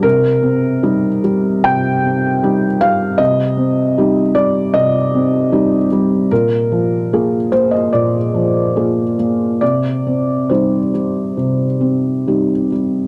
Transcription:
<<
  \new Staff \with { instrumentName = "Felt piano" } { \time 4/4 \key c \minor \tempo 4 = 75 bes'2 g''4. f''8 | ees''4. d''8 ees''2 | bes'4. c''16 ees''16 d''2 | d''4 c''2~ c''8 r8 | }
  \new Staff \with { instrumentName = "Felt piano" } { \time 4/4 \key c \minor c8 c'8 <g ees' g'>8 g8 c8 c'8 <g ees' g'>8 g8 | c8 c'8 <g ees' g'>8 g8 c8 c'8 <g ees' g'>8 g8 | bes,8 f8 <bes f' aes'>8 bes8 bes,8 f8 <bes f' aes'>8 bes8 | c8 c'8 <g ees' g'>8 g8 c8 c'8 <g ees' g'>8 g8 | }
>>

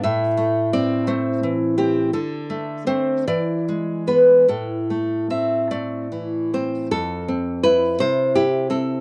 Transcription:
\new Staff \with { instrumentName = "Nylon-string guitar" } { \time 6/8 \key a \minor \tempo 4. = 55 << { e''4 d''8 c''8 r8 g'8 | a'4 c''8 d''4 b'8 | a'4 e''8 d''4 c''8 | a'4 b'8 c''8 g'8 a'8 | } \\ { a,8 a8 c'8 a8 e8 c'8 | d8 a8 <a c'>8 e8 gis8 <gis b>8 | a,8 a8 c'8 a8 e8 c'8 | f,8 c'8 e'8 c8 e'8 c'8 | } >> }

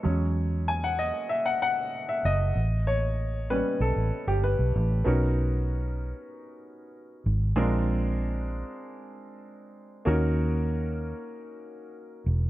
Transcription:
<<
  \new Staff \with { instrumentName = "Grand piano" } { \time 4/4 \key b \major \tempo 4 = 96 a'16 r8. gis''16 fis''16 dis''8 e''16 fis''16 fis''8. e''16 dis''8~ | dis''8 cis''4 b'8 a'8. g'16 b'4 | <b cis' dis' fis' ais'>1 | <gis c' d' eis' ais'>1 |
<ais cis' dis' fis' ais'>1 | }
  \new Staff \with { instrumentName = "Grand piano" } { \time 4/4 \key b \major <fis gis cis'>1 | r4. <g b cis'>8 r2 | r1 | r1 |
r1 | }
  \new Staff \with { instrumentName = "Fingered electric bass" } { \clef bass \time 4/4 \key b \major e,4.~ e,16 r4. r16 fis,,8 | a,,4.~ a,,16 r16 b,,16 a,,16 r16 g,,8 b,,16 a,,8 | b,,4.~ b,,16 r4. r16 gis,,8 | ais,,4.~ ais,,16 r2 r16 |
dis,4.~ dis,16 r4. r16 e,,8 | }
>>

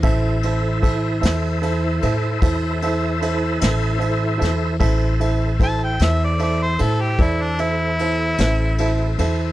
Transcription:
<<
  \new Staff \with { instrumentName = "Harmonica" } { \time 12/8 \key a \minor \tempo 4. = 50 r1. | r4 a''16 g''16 e''16 d''16 d''16 c''16 a'16 g'16 e'16 d'16 e'2 r8 | }
  \new Staff \with { instrumentName = "Tonewheel organ" } { \time 12/8 \key a \minor <e' a' c'' e''>1. | <a' c'' e''>1. | }
  \new Staff \with { instrumentName = "Grand piano" } { \time 12/8 \key a \minor <e' a' c'' e''>8 <e' a' c'' e''>8 <e' a' c'' e''>8 <e' a' c'' e''>8 <e' a' c'' e''>8 <e' a' c'' e''>8 <e' a' c'' e''>8 <e' a' c'' e''>8 <e' a' c'' e''>8 <e' a' c'' e''>8 <e' a' c'' e''>8 <e' a' c'' e''>8 | <e' a' c'' e''>8 <e' a' c'' e''>8 <e' a' c'' e''>8 <e' a' c'' e''>8 <e' a' c'' e''>8 <e' a' c'' e''>8 <e' a' c'' d''>8 <e' a' c'' e''>8 <e' a' c'' e''>8 <e' a' c'' e''>8 <e' a' c'' e''>8 <e' a' c'' e''>8 | }
  \new Staff \with { instrumentName = "Upright bass" } { \clef bass \time 12/8 \key a \minor a,,4. e,4 a,8 e,4. a,,4 e,8 | a,,4. e,4 a,8 e,4. a,,4 e,8 | }
  \new DrumStaff \with { instrumentName = "Drums" } \drummode { \time 12/8 <bd cymr>8 cymr8 <bd cymr>8 <cymr sn>8 cymr8 cymr8 <bd cymr>8 cymr8 cymr8 <cymr sn>8 cymr8 <cymr sn>8 | <bd cymr>8 cymr8 <bd cymr>8 <cymr sn>8 cymr8 cymr8 <bd cymr>8 cymr8 cymr8 <cymr sn>8 cymr8 cymr8 | }
>>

